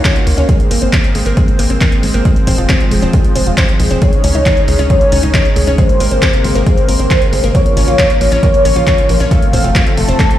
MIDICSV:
0, 0, Header, 1, 6, 480
1, 0, Start_track
1, 0, Tempo, 441176
1, 532, Time_signature, 4, 2, 24, 8
1, 11300, End_track
2, 0, Start_track
2, 0, Title_t, "Soft synth lead"
2, 0, Program_c, 0, 80
2, 4373, Note_on_c, 0, 73, 104
2, 5236, Note_off_c, 0, 73, 0
2, 5332, Note_on_c, 0, 73, 95
2, 6196, Note_off_c, 0, 73, 0
2, 6290, Note_on_c, 0, 72, 96
2, 6915, Note_off_c, 0, 72, 0
2, 7011, Note_on_c, 0, 72, 98
2, 8115, Note_off_c, 0, 72, 0
2, 8212, Note_on_c, 0, 73, 102
2, 9076, Note_off_c, 0, 73, 0
2, 9171, Note_on_c, 0, 73, 97
2, 10035, Note_off_c, 0, 73, 0
2, 10134, Note_on_c, 0, 77, 95
2, 10757, Note_off_c, 0, 77, 0
2, 10853, Note_on_c, 0, 81, 105
2, 11300, Note_off_c, 0, 81, 0
2, 11300, End_track
3, 0, Start_track
3, 0, Title_t, "Synth pluck"
3, 0, Program_c, 1, 84
3, 50, Note_on_c, 1, 61, 99
3, 152, Note_off_c, 1, 61, 0
3, 290, Note_on_c, 1, 58, 76
3, 392, Note_off_c, 1, 58, 0
3, 410, Note_on_c, 1, 61, 99
3, 478, Note_off_c, 1, 61, 0
3, 530, Note_on_c, 1, 56, 101
3, 572, Note_off_c, 1, 56, 0
3, 771, Note_on_c, 1, 58, 98
3, 812, Note_off_c, 1, 58, 0
3, 889, Note_on_c, 1, 60, 75
3, 958, Note_off_c, 1, 60, 0
3, 1011, Note_on_c, 1, 58, 99
3, 1113, Note_off_c, 1, 58, 0
3, 1250, Note_on_c, 1, 56, 76
3, 1352, Note_off_c, 1, 56, 0
3, 1370, Note_on_c, 1, 58, 104
3, 1438, Note_off_c, 1, 58, 0
3, 1489, Note_on_c, 1, 56, 101
3, 1531, Note_off_c, 1, 56, 0
3, 1730, Note_on_c, 1, 58, 100
3, 1771, Note_off_c, 1, 58, 0
3, 1850, Note_on_c, 1, 60, 77
3, 1919, Note_off_c, 1, 60, 0
3, 1971, Note_on_c, 1, 58, 98
3, 2073, Note_off_c, 1, 58, 0
3, 2210, Note_on_c, 1, 56, 74
3, 2312, Note_off_c, 1, 56, 0
3, 2330, Note_on_c, 1, 58, 100
3, 2399, Note_off_c, 1, 58, 0
3, 2450, Note_on_c, 1, 56, 101
3, 2492, Note_off_c, 1, 56, 0
3, 2690, Note_on_c, 1, 60, 97
3, 2731, Note_off_c, 1, 60, 0
3, 2810, Note_on_c, 1, 65, 73
3, 2879, Note_off_c, 1, 65, 0
3, 2931, Note_on_c, 1, 60, 97
3, 3033, Note_off_c, 1, 60, 0
3, 3172, Note_on_c, 1, 56, 76
3, 3273, Note_off_c, 1, 56, 0
3, 3291, Note_on_c, 1, 60, 103
3, 3359, Note_off_c, 1, 60, 0
3, 3412, Note_on_c, 1, 56, 99
3, 3452, Note_off_c, 1, 56, 0
3, 3651, Note_on_c, 1, 60, 100
3, 3692, Note_off_c, 1, 60, 0
3, 3772, Note_on_c, 1, 65, 76
3, 3839, Note_off_c, 1, 65, 0
3, 3891, Note_on_c, 1, 60, 99
3, 3993, Note_off_c, 1, 60, 0
3, 4131, Note_on_c, 1, 56, 76
3, 4233, Note_off_c, 1, 56, 0
3, 4252, Note_on_c, 1, 60, 102
3, 4319, Note_off_c, 1, 60, 0
3, 4372, Note_on_c, 1, 56, 100
3, 4412, Note_off_c, 1, 56, 0
3, 4612, Note_on_c, 1, 61, 99
3, 4652, Note_off_c, 1, 61, 0
3, 4732, Note_on_c, 1, 63, 78
3, 4800, Note_off_c, 1, 63, 0
3, 4853, Note_on_c, 1, 63, 79
3, 4954, Note_off_c, 1, 63, 0
3, 5092, Note_on_c, 1, 56, 75
3, 5193, Note_off_c, 1, 56, 0
3, 5212, Note_on_c, 1, 61, 103
3, 5279, Note_off_c, 1, 61, 0
3, 5331, Note_on_c, 1, 56, 97
3, 5372, Note_off_c, 1, 56, 0
3, 5571, Note_on_c, 1, 61, 100
3, 5612, Note_off_c, 1, 61, 0
3, 5690, Note_on_c, 1, 63, 77
3, 5759, Note_off_c, 1, 63, 0
3, 5811, Note_on_c, 1, 63, 82
3, 5913, Note_off_c, 1, 63, 0
3, 6050, Note_on_c, 1, 56, 74
3, 6152, Note_off_c, 1, 56, 0
3, 6171, Note_on_c, 1, 61, 101
3, 6239, Note_off_c, 1, 61, 0
3, 6292, Note_on_c, 1, 56, 102
3, 6332, Note_off_c, 1, 56, 0
3, 6531, Note_on_c, 1, 58, 102
3, 6572, Note_off_c, 1, 58, 0
3, 6652, Note_on_c, 1, 60, 77
3, 6719, Note_off_c, 1, 60, 0
3, 6771, Note_on_c, 1, 60, 80
3, 6873, Note_off_c, 1, 60, 0
3, 7010, Note_on_c, 1, 56, 78
3, 7112, Note_off_c, 1, 56, 0
3, 7131, Note_on_c, 1, 58, 104
3, 7199, Note_off_c, 1, 58, 0
3, 7251, Note_on_c, 1, 56, 97
3, 7292, Note_off_c, 1, 56, 0
3, 7491, Note_on_c, 1, 58, 98
3, 7532, Note_off_c, 1, 58, 0
3, 7611, Note_on_c, 1, 60, 76
3, 7679, Note_off_c, 1, 60, 0
3, 7731, Note_on_c, 1, 60, 82
3, 7833, Note_off_c, 1, 60, 0
3, 7971, Note_on_c, 1, 56, 75
3, 8073, Note_off_c, 1, 56, 0
3, 8091, Note_on_c, 1, 58, 102
3, 8159, Note_off_c, 1, 58, 0
3, 8211, Note_on_c, 1, 58, 102
3, 8252, Note_off_c, 1, 58, 0
3, 8452, Note_on_c, 1, 61, 101
3, 8492, Note_off_c, 1, 61, 0
3, 8571, Note_on_c, 1, 65, 76
3, 8639, Note_off_c, 1, 65, 0
3, 8692, Note_on_c, 1, 65, 81
3, 8793, Note_off_c, 1, 65, 0
3, 8932, Note_on_c, 1, 58, 78
3, 9033, Note_off_c, 1, 58, 0
3, 9051, Note_on_c, 1, 61, 103
3, 9119, Note_off_c, 1, 61, 0
3, 9171, Note_on_c, 1, 58, 101
3, 9212, Note_off_c, 1, 58, 0
3, 9411, Note_on_c, 1, 61, 99
3, 9452, Note_off_c, 1, 61, 0
3, 9530, Note_on_c, 1, 65, 76
3, 9599, Note_off_c, 1, 65, 0
3, 9650, Note_on_c, 1, 65, 82
3, 9752, Note_off_c, 1, 65, 0
3, 9891, Note_on_c, 1, 58, 77
3, 9993, Note_off_c, 1, 58, 0
3, 10012, Note_on_c, 1, 61, 105
3, 10079, Note_off_c, 1, 61, 0
3, 10131, Note_on_c, 1, 57, 103
3, 10172, Note_off_c, 1, 57, 0
3, 10371, Note_on_c, 1, 60, 98
3, 10412, Note_off_c, 1, 60, 0
3, 10492, Note_on_c, 1, 65, 76
3, 10559, Note_off_c, 1, 65, 0
3, 10612, Note_on_c, 1, 65, 80
3, 10713, Note_off_c, 1, 65, 0
3, 10852, Note_on_c, 1, 57, 76
3, 10953, Note_off_c, 1, 57, 0
3, 10971, Note_on_c, 1, 60, 102
3, 11039, Note_off_c, 1, 60, 0
3, 11091, Note_on_c, 1, 57, 101
3, 11132, Note_off_c, 1, 57, 0
3, 11300, End_track
4, 0, Start_track
4, 0, Title_t, "Analog synth pad"
4, 0, Program_c, 2, 89
4, 0, Note_on_c, 2, 51, 80
4, 0, Note_on_c, 2, 58, 75
4, 0, Note_on_c, 2, 61, 89
4, 0, Note_on_c, 2, 65, 77
4, 0, Note_on_c, 2, 66, 92
4, 494, Note_off_c, 2, 61, 0
4, 512, Note_off_c, 2, 51, 0
4, 512, Note_off_c, 2, 65, 0
4, 512, Note_off_c, 2, 66, 0
4, 529, Note_on_c, 2, 56, 81
4, 530, Note_on_c, 2, 60, 91
4, 2410, Note_off_c, 2, 58, 0
4, 2451, Note_on_c, 2, 53, 83
4, 4332, Note_off_c, 2, 60, 0
4, 4352, Note_off_c, 2, 53, 0
4, 4370, Note_on_c, 2, 51, 84
4, 4370, Note_on_c, 2, 61, 91
4, 6272, Note_off_c, 2, 51, 0
4, 6272, Note_off_c, 2, 61, 0
4, 6289, Note_on_c, 2, 58, 94
4, 6290, Note_on_c, 2, 48, 83
4, 8167, Note_off_c, 2, 56, 0
4, 8191, Note_off_c, 2, 58, 0
4, 8192, Note_off_c, 2, 48, 0
4, 8212, Note_on_c, 2, 49, 84
4, 8213, Note_on_c, 2, 53, 76
4, 8213, Note_on_c, 2, 58, 94
4, 10113, Note_off_c, 2, 49, 0
4, 10113, Note_off_c, 2, 58, 0
4, 10132, Note_on_c, 2, 48, 82
4, 10133, Note_on_c, 2, 57, 94
4, 11300, Note_off_c, 2, 48, 0
4, 11300, Note_off_c, 2, 53, 0
4, 11300, Note_off_c, 2, 57, 0
4, 11300, End_track
5, 0, Start_track
5, 0, Title_t, "Analog synth bass"
5, 0, Program_c, 3, 38
5, 291, Note_on_c, 3, 39, 95
5, 372, Note_off_c, 3, 39, 0
5, 411, Note_on_c, 3, 39, 82
5, 492, Note_off_c, 3, 39, 0
5, 770, Note_on_c, 3, 32, 95
5, 851, Note_off_c, 3, 32, 0
5, 891, Note_on_c, 3, 32, 79
5, 972, Note_off_c, 3, 32, 0
5, 1250, Note_on_c, 3, 32, 91
5, 1331, Note_off_c, 3, 32, 0
5, 1369, Note_on_c, 3, 32, 82
5, 1451, Note_off_c, 3, 32, 0
5, 1730, Note_on_c, 3, 32, 88
5, 1811, Note_off_c, 3, 32, 0
5, 1849, Note_on_c, 3, 32, 82
5, 1931, Note_off_c, 3, 32, 0
5, 2210, Note_on_c, 3, 32, 96
5, 2291, Note_off_c, 3, 32, 0
5, 2331, Note_on_c, 3, 32, 83
5, 2412, Note_off_c, 3, 32, 0
5, 2690, Note_on_c, 3, 29, 91
5, 2771, Note_off_c, 3, 29, 0
5, 2811, Note_on_c, 3, 29, 79
5, 2892, Note_off_c, 3, 29, 0
5, 3172, Note_on_c, 3, 29, 94
5, 3252, Note_off_c, 3, 29, 0
5, 3292, Note_on_c, 3, 29, 84
5, 3372, Note_off_c, 3, 29, 0
5, 3651, Note_on_c, 3, 29, 85
5, 3731, Note_off_c, 3, 29, 0
5, 3771, Note_on_c, 3, 29, 81
5, 3851, Note_off_c, 3, 29, 0
5, 4131, Note_on_c, 3, 36, 94
5, 4212, Note_off_c, 3, 36, 0
5, 4252, Note_on_c, 3, 29, 84
5, 4332, Note_off_c, 3, 29, 0
5, 4613, Note_on_c, 3, 37, 93
5, 4692, Note_off_c, 3, 37, 0
5, 4732, Note_on_c, 3, 37, 80
5, 4812, Note_off_c, 3, 37, 0
5, 5091, Note_on_c, 3, 37, 93
5, 5172, Note_off_c, 3, 37, 0
5, 5211, Note_on_c, 3, 37, 82
5, 5292, Note_off_c, 3, 37, 0
5, 5572, Note_on_c, 3, 37, 86
5, 5652, Note_off_c, 3, 37, 0
5, 5692, Note_on_c, 3, 37, 81
5, 5772, Note_off_c, 3, 37, 0
5, 6052, Note_on_c, 3, 37, 99
5, 6132, Note_off_c, 3, 37, 0
5, 6172, Note_on_c, 3, 37, 83
5, 6252, Note_off_c, 3, 37, 0
5, 6532, Note_on_c, 3, 32, 95
5, 6612, Note_off_c, 3, 32, 0
5, 6651, Note_on_c, 3, 32, 79
5, 6731, Note_off_c, 3, 32, 0
5, 7012, Note_on_c, 3, 32, 93
5, 7092, Note_off_c, 3, 32, 0
5, 7132, Note_on_c, 3, 32, 84
5, 7212, Note_off_c, 3, 32, 0
5, 7491, Note_on_c, 3, 32, 90
5, 7572, Note_off_c, 3, 32, 0
5, 7611, Note_on_c, 3, 32, 83
5, 7691, Note_off_c, 3, 32, 0
5, 7971, Note_on_c, 3, 32, 99
5, 8051, Note_off_c, 3, 32, 0
5, 8090, Note_on_c, 3, 32, 84
5, 8171, Note_off_c, 3, 32, 0
5, 8451, Note_on_c, 3, 34, 96
5, 8532, Note_off_c, 3, 34, 0
5, 8570, Note_on_c, 3, 34, 80
5, 8651, Note_off_c, 3, 34, 0
5, 8932, Note_on_c, 3, 34, 91
5, 9012, Note_off_c, 3, 34, 0
5, 9052, Note_on_c, 3, 34, 83
5, 9132, Note_off_c, 3, 34, 0
5, 9411, Note_on_c, 3, 34, 89
5, 9492, Note_off_c, 3, 34, 0
5, 9532, Note_on_c, 3, 34, 80
5, 9612, Note_off_c, 3, 34, 0
5, 9891, Note_on_c, 3, 34, 97
5, 9972, Note_off_c, 3, 34, 0
5, 10013, Note_on_c, 3, 34, 85
5, 10092, Note_off_c, 3, 34, 0
5, 10371, Note_on_c, 3, 29, 92
5, 10452, Note_off_c, 3, 29, 0
5, 10492, Note_on_c, 3, 29, 81
5, 10572, Note_off_c, 3, 29, 0
5, 10852, Note_on_c, 3, 29, 90
5, 10932, Note_off_c, 3, 29, 0
5, 10972, Note_on_c, 3, 29, 86
5, 11052, Note_off_c, 3, 29, 0
5, 11300, End_track
6, 0, Start_track
6, 0, Title_t, "Drums"
6, 51, Note_on_c, 9, 36, 117
6, 52, Note_on_c, 9, 39, 117
6, 52, Note_on_c, 9, 42, 63
6, 160, Note_off_c, 9, 36, 0
6, 161, Note_off_c, 9, 39, 0
6, 161, Note_off_c, 9, 42, 0
6, 172, Note_on_c, 9, 42, 38
6, 281, Note_off_c, 9, 42, 0
6, 292, Note_on_c, 9, 46, 94
6, 401, Note_off_c, 9, 46, 0
6, 412, Note_on_c, 9, 42, 38
6, 521, Note_off_c, 9, 42, 0
6, 531, Note_on_c, 9, 36, 119
6, 532, Note_on_c, 9, 42, 62
6, 640, Note_off_c, 9, 36, 0
6, 641, Note_off_c, 9, 42, 0
6, 652, Note_on_c, 9, 42, 36
6, 761, Note_off_c, 9, 42, 0
6, 772, Note_on_c, 9, 46, 110
6, 881, Note_off_c, 9, 46, 0
6, 892, Note_on_c, 9, 42, 35
6, 1001, Note_off_c, 9, 42, 0
6, 1011, Note_on_c, 9, 36, 121
6, 1012, Note_on_c, 9, 39, 118
6, 1012, Note_on_c, 9, 42, 60
6, 1120, Note_off_c, 9, 36, 0
6, 1121, Note_off_c, 9, 39, 0
6, 1121, Note_off_c, 9, 42, 0
6, 1132, Note_on_c, 9, 42, 36
6, 1241, Note_off_c, 9, 42, 0
6, 1251, Note_on_c, 9, 46, 96
6, 1360, Note_off_c, 9, 46, 0
6, 1371, Note_on_c, 9, 42, 37
6, 1480, Note_off_c, 9, 42, 0
6, 1490, Note_on_c, 9, 36, 121
6, 1491, Note_on_c, 9, 42, 61
6, 1599, Note_off_c, 9, 36, 0
6, 1600, Note_off_c, 9, 42, 0
6, 1611, Note_on_c, 9, 42, 36
6, 1720, Note_off_c, 9, 42, 0
6, 1730, Note_on_c, 9, 46, 104
6, 1839, Note_off_c, 9, 46, 0
6, 1850, Note_on_c, 9, 42, 38
6, 1959, Note_off_c, 9, 42, 0
6, 1970, Note_on_c, 9, 36, 121
6, 1971, Note_on_c, 9, 39, 117
6, 1971, Note_on_c, 9, 42, 63
6, 2079, Note_off_c, 9, 36, 0
6, 2079, Note_off_c, 9, 39, 0
6, 2079, Note_off_c, 9, 42, 0
6, 2090, Note_on_c, 9, 42, 37
6, 2199, Note_off_c, 9, 42, 0
6, 2210, Note_on_c, 9, 46, 92
6, 2319, Note_off_c, 9, 46, 0
6, 2330, Note_on_c, 9, 42, 38
6, 2439, Note_off_c, 9, 42, 0
6, 2450, Note_on_c, 9, 36, 120
6, 2450, Note_on_c, 9, 42, 62
6, 2559, Note_off_c, 9, 36, 0
6, 2559, Note_off_c, 9, 42, 0
6, 2570, Note_on_c, 9, 42, 35
6, 2679, Note_off_c, 9, 42, 0
6, 2690, Note_on_c, 9, 36, 63
6, 2690, Note_on_c, 9, 46, 107
6, 2798, Note_off_c, 9, 46, 0
6, 2799, Note_off_c, 9, 36, 0
6, 2810, Note_on_c, 9, 42, 36
6, 2919, Note_off_c, 9, 42, 0
6, 2930, Note_on_c, 9, 39, 112
6, 2930, Note_on_c, 9, 42, 59
6, 2931, Note_on_c, 9, 36, 120
6, 3039, Note_off_c, 9, 36, 0
6, 3039, Note_off_c, 9, 39, 0
6, 3039, Note_off_c, 9, 42, 0
6, 3051, Note_on_c, 9, 42, 37
6, 3160, Note_off_c, 9, 42, 0
6, 3171, Note_on_c, 9, 46, 91
6, 3279, Note_off_c, 9, 46, 0
6, 3291, Note_on_c, 9, 42, 37
6, 3400, Note_off_c, 9, 42, 0
6, 3410, Note_on_c, 9, 42, 62
6, 3411, Note_on_c, 9, 36, 118
6, 3519, Note_off_c, 9, 42, 0
6, 3520, Note_off_c, 9, 36, 0
6, 3530, Note_on_c, 9, 42, 35
6, 3639, Note_off_c, 9, 42, 0
6, 3650, Note_on_c, 9, 46, 104
6, 3759, Note_off_c, 9, 46, 0
6, 3771, Note_on_c, 9, 42, 37
6, 3879, Note_off_c, 9, 42, 0
6, 3891, Note_on_c, 9, 36, 119
6, 3891, Note_on_c, 9, 39, 109
6, 3891, Note_on_c, 9, 42, 59
6, 4000, Note_off_c, 9, 36, 0
6, 4000, Note_off_c, 9, 39, 0
6, 4000, Note_off_c, 9, 42, 0
6, 4010, Note_on_c, 9, 42, 36
6, 4119, Note_off_c, 9, 42, 0
6, 4130, Note_on_c, 9, 46, 91
6, 4239, Note_off_c, 9, 46, 0
6, 4251, Note_on_c, 9, 42, 37
6, 4359, Note_off_c, 9, 42, 0
6, 4371, Note_on_c, 9, 36, 110
6, 4371, Note_on_c, 9, 42, 61
6, 4479, Note_off_c, 9, 42, 0
6, 4480, Note_off_c, 9, 36, 0
6, 4491, Note_on_c, 9, 42, 35
6, 4599, Note_off_c, 9, 42, 0
6, 4611, Note_on_c, 9, 46, 104
6, 4720, Note_off_c, 9, 46, 0
6, 4731, Note_on_c, 9, 42, 35
6, 4840, Note_off_c, 9, 42, 0
6, 4851, Note_on_c, 9, 36, 117
6, 4851, Note_on_c, 9, 39, 105
6, 4851, Note_on_c, 9, 42, 61
6, 4960, Note_off_c, 9, 36, 0
6, 4960, Note_off_c, 9, 39, 0
6, 4960, Note_off_c, 9, 42, 0
6, 4972, Note_on_c, 9, 42, 36
6, 5080, Note_off_c, 9, 42, 0
6, 5092, Note_on_c, 9, 46, 92
6, 5200, Note_off_c, 9, 46, 0
6, 5212, Note_on_c, 9, 42, 36
6, 5320, Note_off_c, 9, 42, 0
6, 5331, Note_on_c, 9, 36, 119
6, 5331, Note_on_c, 9, 42, 61
6, 5440, Note_off_c, 9, 36, 0
6, 5440, Note_off_c, 9, 42, 0
6, 5452, Note_on_c, 9, 42, 37
6, 5560, Note_off_c, 9, 42, 0
6, 5572, Note_on_c, 9, 46, 103
6, 5680, Note_off_c, 9, 46, 0
6, 5692, Note_on_c, 9, 42, 39
6, 5801, Note_off_c, 9, 42, 0
6, 5811, Note_on_c, 9, 36, 113
6, 5813, Note_on_c, 9, 39, 110
6, 5813, Note_on_c, 9, 42, 60
6, 5920, Note_off_c, 9, 36, 0
6, 5921, Note_off_c, 9, 39, 0
6, 5921, Note_off_c, 9, 42, 0
6, 5932, Note_on_c, 9, 42, 37
6, 6041, Note_off_c, 9, 42, 0
6, 6052, Note_on_c, 9, 46, 91
6, 6161, Note_off_c, 9, 46, 0
6, 6172, Note_on_c, 9, 42, 38
6, 6281, Note_off_c, 9, 42, 0
6, 6291, Note_on_c, 9, 36, 110
6, 6293, Note_on_c, 9, 42, 63
6, 6400, Note_off_c, 9, 36, 0
6, 6401, Note_off_c, 9, 42, 0
6, 6412, Note_on_c, 9, 42, 38
6, 6521, Note_off_c, 9, 42, 0
6, 6531, Note_on_c, 9, 46, 99
6, 6640, Note_off_c, 9, 46, 0
6, 6651, Note_on_c, 9, 42, 37
6, 6760, Note_off_c, 9, 42, 0
6, 6771, Note_on_c, 9, 36, 108
6, 6772, Note_on_c, 9, 39, 108
6, 6772, Note_on_c, 9, 42, 64
6, 6880, Note_off_c, 9, 36, 0
6, 6880, Note_off_c, 9, 39, 0
6, 6880, Note_off_c, 9, 42, 0
6, 6892, Note_on_c, 9, 42, 37
6, 7001, Note_off_c, 9, 42, 0
6, 7012, Note_on_c, 9, 46, 88
6, 7121, Note_off_c, 9, 46, 0
6, 7132, Note_on_c, 9, 42, 38
6, 7240, Note_off_c, 9, 42, 0
6, 7251, Note_on_c, 9, 36, 114
6, 7251, Note_on_c, 9, 42, 64
6, 7360, Note_off_c, 9, 36, 0
6, 7360, Note_off_c, 9, 42, 0
6, 7372, Note_on_c, 9, 42, 37
6, 7481, Note_off_c, 9, 42, 0
6, 7491, Note_on_c, 9, 46, 97
6, 7600, Note_off_c, 9, 46, 0
6, 7611, Note_on_c, 9, 42, 38
6, 7720, Note_off_c, 9, 42, 0
6, 7731, Note_on_c, 9, 36, 114
6, 7732, Note_on_c, 9, 39, 113
6, 7732, Note_on_c, 9, 42, 63
6, 7840, Note_off_c, 9, 36, 0
6, 7841, Note_off_c, 9, 39, 0
6, 7841, Note_off_c, 9, 42, 0
6, 7852, Note_on_c, 9, 42, 37
6, 7961, Note_off_c, 9, 42, 0
6, 7972, Note_on_c, 9, 46, 86
6, 8081, Note_off_c, 9, 46, 0
6, 8092, Note_on_c, 9, 42, 38
6, 8201, Note_off_c, 9, 42, 0
6, 8211, Note_on_c, 9, 36, 110
6, 8212, Note_on_c, 9, 42, 67
6, 8320, Note_off_c, 9, 36, 0
6, 8321, Note_off_c, 9, 42, 0
6, 8332, Note_on_c, 9, 42, 39
6, 8441, Note_off_c, 9, 42, 0
6, 8453, Note_on_c, 9, 46, 99
6, 8561, Note_off_c, 9, 46, 0
6, 8572, Note_on_c, 9, 42, 39
6, 8681, Note_off_c, 9, 42, 0
6, 8691, Note_on_c, 9, 36, 110
6, 8692, Note_on_c, 9, 39, 114
6, 8692, Note_on_c, 9, 42, 64
6, 8800, Note_off_c, 9, 36, 0
6, 8801, Note_off_c, 9, 39, 0
6, 8801, Note_off_c, 9, 42, 0
6, 8813, Note_on_c, 9, 42, 40
6, 8922, Note_off_c, 9, 42, 0
6, 8933, Note_on_c, 9, 46, 88
6, 9042, Note_off_c, 9, 46, 0
6, 9052, Note_on_c, 9, 42, 41
6, 9161, Note_off_c, 9, 42, 0
6, 9171, Note_on_c, 9, 36, 112
6, 9173, Note_on_c, 9, 42, 66
6, 9280, Note_off_c, 9, 36, 0
6, 9281, Note_off_c, 9, 42, 0
6, 9293, Note_on_c, 9, 42, 40
6, 9402, Note_off_c, 9, 42, 0
6, 9413, Note_on_c, 9, 46, 101
6, 9522, Note_off_c, 9, 46, 0
6, 9533, Note_on_c, 9, 42, 41
6, 9642, Note_off_c, 9, 42, 0
6, 9651, Note_on_c, 9, 36, 116
6, 9653, Note_on_c, 9, 39, 112
6, 9653, Note_on_c, 9, 42, 65
6, 9760, Note_off_c, 9, 36, 0
6, 9761, Note_off_c, 9, 39, 0
6, 9761, Note_off_c, 9, 42, 0
6, 9773, Note_on_c, 9, 42, 40
6, 9882, Note_off_c, 9, 42, 0
6, 9893, Note_on_c, 9, 46, 86
6, 10002, Note_off_c, 9, 46, 0
6, 10014, Note_on_c, 9, 42, 40
6, 10122, Note_off_c, 9, 42, 0
6, 10131, Note_on_c, 9, 36, 110
6, 10133, Note_on_c, 9, 42, 69
6, 10240, Note_off_c, 9, 36, 0
6, 10242, Note_off_c, 9, 42, 0
6, 10253, Note_on_c, 9, 42, 40
6, 10362, Note_off_c, 9, 42, 0
6, 10371, Note_on_c, 9, 36, 60
6, 10373, Note_on_c, 9, 46, 100
6, 10480, Note_off_c, 9, 36, 0
6, 10482, Note_off_c, 9, 46, 0
6, 10493, Note_on_c, 9, 42, 39
6, 10602, Note_off_c, 9, 42, 0
6, 10611, Note_on_c, 9, 36, 116
6, 10613, Note_on_c, 9, 39, 115
6, 10613, Note_on_c, 9, 42, 67
6, 10720, Note_off_c, 9, 36, 0
6, 10722, Note_off_c, 9, 39, 0
6, 10722, Note_off_c, 9, 42, 0
6, 10734, Note_on_c, 9, 42, 39
6, 10843, Note_off_c, 9, 42, 0
6, 10852, Note_on_c, 9, 46, 90
6, 10961, Note_off_c, 9, 46, 0
6, 10974, Note_on_c, 9, 42, 40
6, 11083, Note_off_c, 9, 42, 0
6, 11091, Note_on_c, 9, 36, 114
6, 11093, Note_on_c, 9, 39, 62
6, 11093, Note_on_c, 9, 42, 69
6, 11200, Note_off_c, 9, 36, 0
6, 11202, Note_off_c, 9, 39, 0
6, 11202, Note_off_c, 9, 42, 0
6, 11213, Note_on_c, 9, 42, 41
6, 11300, Note_off_c, 9, 42, 0
6, 11300, End_track
0, 0, End_of_file